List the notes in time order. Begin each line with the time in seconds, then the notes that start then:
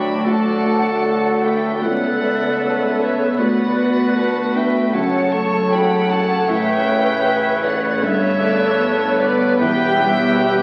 Already playing: D2 F#3 D4 F#4 B4 D5 E5 G5 B5
0.24 D2 A3 A4 D5 F#5 A5
0.65 A3
1.04 A4 D5
1.43 A4 B4 E5 G5
1.81 C#2 A3 B3 A4 B4 C#5 D5 F#5
2.21 B3 E5
2.62 A4 C#5
3.00 B4 C#5 E5
3.39 D2 B3 F#4 B4 D5 F#5
3.78 B3
4.16 A4 B4
4.55 D4 B4 E5 G5
4.94 F#1 F#2 C#3 A4 C#5 F#5 A5
5.32 A3 A5 C#6
5.71 C#5 F#5 G5 B5
6.10 A4 F#5 A5
6.48 A1 A2 B4 E5 G5
6.86 A3 C#5
7.25 B4 E5
7.63 A4 C#5 D5 F#5
8.02 G1 G2 B3 A4 B4 C#5 E5
8.41 A3 D5
8.80 B3 B4 C#5
9.18 A4 B4 D5
9.59 E1 E2 G4 B4 E5 G5
9.98 G3 C#5
10.38 B4